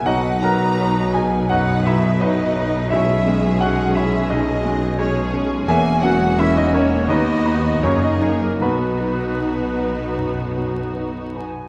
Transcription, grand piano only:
\new Staff \with { instrumentName = "Grand piano" } { \time 4/4 \key b \major \tempo 4 = 85 << { <fis' dis'' fis''>8 <ais' fis'' ais''>4 <gis' gis''>8 <fis' dis'' fis''>8 <e' e''>8 <dis' b' dis''>4 | <e' cis'' e''>4 <fis' fis''>8 <e' e''>8 <dis' dis''>4 <gis' cis''>8 r8 | <gis' e'' gis''>8 <fis' fis''>8 <e' e''>16 <dis' dis''>16 <cis' cis''>8 <dis' b' dis''>4 <cis' cis''>16 <dis' dis''>16 <cis' cis''>16 <ais ais'>16 | <b fis' b'>2. r4 | } \\ { b,,8 fis8 fis'8 dis''8 fis,8 fis8 fis'8 dis''8 | b,,8 gis8 cis'8 cis''8 b,,8 gis8 cis'8 cis''8 | e,8 fis8 cis'8 ais'8 dis,8 <dis' b'>8 fis,8 <dis' ais'>8 | b,,8 fis8 dis'8 b'8 fis,8 fis8 dis'8 b'8 | } >> }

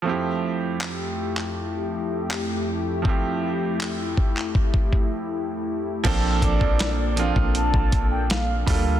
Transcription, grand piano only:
\new Staff \with { instrumentName = "Grand piano" } { \time 4/4 \key f \major \tempo 4 = 80 <f a c' e' g'>1 | <f a c' e' g'>1 | <f bes c' d' a'>8 r16 <f bes c' d' a'>8 r16 <f bes c' d' f'>4. r8 <g a bes d' f' a'>8 | }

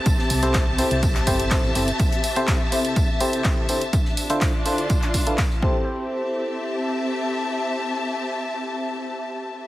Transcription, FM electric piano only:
\new Staff \with { instrumentName = "FM electric piano" } { \time 4/4 \key a \minor \tempo 4 = 124 r8. <c c' e' g' a' c''>8 r16 <c c' e' g' a' c''>8 r8 <c c' e' g' a' c''>8 <c c' e' g' a' c''>8 <c c' e' g' a' c''>16 r16 | r8. <c c' e' g' a' c''>8 r16 <c c' e' g' a' c''>8 r8 <c c' e' g' a' c''>8 r8 <d c' e' g' a' c''>16 r16 | r8. <d d' e' f' a' c''>8 r16 <d d' e' f' a' c''>8 r8. <d d' e' f' a' b'>16 r8 <c' e' g' a' c''>8~ | <c' e' g' a' c''>1~ |
<c' e' g' a' c''>1 | }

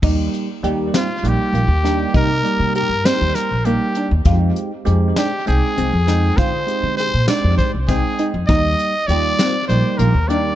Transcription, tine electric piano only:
\new Staff \with { instrumentName = "Tine electric piano" } { \time 7/8 \key ees \major \tempo 4 = 99 <g bes ees' g'>8 r8 <g bes ees' g'>8 r8 <g bes ees' g'>8 r8 <g bes ees' g'>8 | r8 <g bes ees' g'>8 r8 <g bes ees' g'>8 r8 <g bes ees' g'>8 r8 | <aes c' ees' g'>8 r8 <aes c' ees' g'>8 r8 <aes c' ees' g''>8 r8 <aes c' ees' g''>8 | r8 <aes c' ees' g'>8 r8 <aes c' ees' g'>8 r8 <aes c' ees' g''>8 r8 |
<g bes ees' g'>8 r8 <g bes ees' f'>8 r8 <g bes ees' g'>8 r8 <g bes ees' g'>8 | }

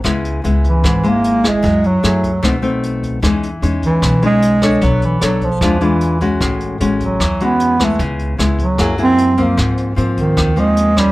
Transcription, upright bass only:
\new Staff \with { instrumentName = "Upright bass" } { \clef bass \time 4/4 \key des \lydian \tempo 4 = 151 des,4 des,4 aes,,2 | ges,4 ges,4 b,,2 | e,4 e,4 b,,2 | b,,4 b,,4 e,2 |
a,,4 a,,4 e,2 | des,4 des,4 ges,2 | aes,4 aes,4 ees,2 | }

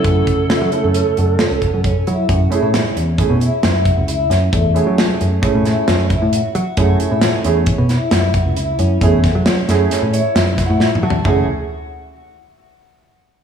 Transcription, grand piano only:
\new Staff \with { instrumentName = "Grand piano" } { \time 5/4 \key fis \minor \tempo 4 = 134 <a cis' e' a'>8 r4 <a cis' e' a'>4. r2 | r8 <a cis' e' gis'>8 r4 <a cis' e' gis'>8 r2 r8 | r8 <a cis' e' gis'>4. <a cis' e' gis'>4. r4. | <a cis' e' gis'>4. <a cis' e' gis'>8 r2. |
<a cis' e' gis'>8 r4 <a cis' e' gis'>8 r8 cis''8 \tuplet 3/2 { e''4 fis''8 } e''8 a''8 | <a cis' e' gis'>8 r1 r8 | }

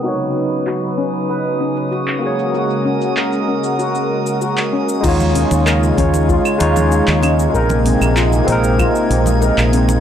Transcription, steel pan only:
\new Staff \with { instrumentName = "Steel pan" } { \time 4/4 \key ees \minor \tempo 4 = 96 ges'8 r8 ges'8 des'8 ces''8 des'8 ges'8 r8 | ges'8 des'8 bes'8 des'8 ges'8 r8 ges'8 des'8 | f'8 des'8 bes'8 des'8 f'8 r8 f'8 des'8 | bes'8 c'8 f'8 r8 f'8 c'8 bes'8 c'8 | }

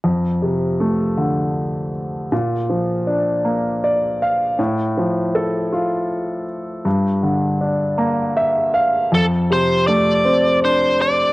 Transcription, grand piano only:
<<
  \new Staff \with { instrumentName = "Grand piano" } { \time 6/8 \key f \major \tempo 4. = 53 r2. | r2 d''8 f''8 | r2. | r2 e''8 f''8 |
r2. | }
  \new Staff \with { instrumentName = "Grand piano" } { \clef bass \time 6/8 \key f \major f,8 c8 a8 d4. | bes,8 f8 d'8 bes4. | a,8 f8 a'8 f'4. | g,8 d8 d'8 bes4. |
f,8 c8 a8 c'8 d'4 | }
>>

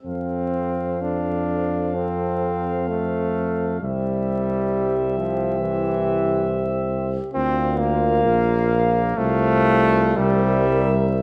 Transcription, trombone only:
\new Staff \with { instrumentName = "Trombone" } { \time 4/4 \key f \major \tempo 4 = 65 c'4 d'4 c'4 a4 | g4. f8 e4. r8 | c'8 bes4. a4 g4 | }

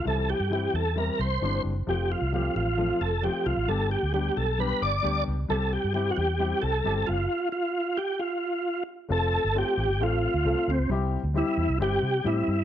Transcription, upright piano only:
\new Staff \with { instrumentName = "Upright piano" } { \time 4/4 \key f \major \tempo 4 = 133 <e g c' e'>8 r8 <e g c' e'>8 r8 <e g c' e'>8 r8 <e g c' d'>8 r8 | <f a c' f'>8 r8 <f a c' g'>8 r8 <f a c' f'>8 r8 <f a c' f'>8 r8 | <g b d' g'>8 r8 <g b d' g'>8 r8 <g b d' g'>8 r8 <g b d' g'>8 r8 | <g c' e' g'>8 r8 <g c' e' g'>8 r8 <g c' e' g'>8 r8 <g c' e' g'>8 r8 |
r1 | <a c' f' a'>8 r8 <a c' f' a'>8 r8 <a c' f' a'>8 r8 <a c' f' a'>8 r8 | <g c' e' g'>8 r8 <g c' e' g'>8 r8 <g c' e' g'>8 r8 <g c' e' g'>8 r8 | }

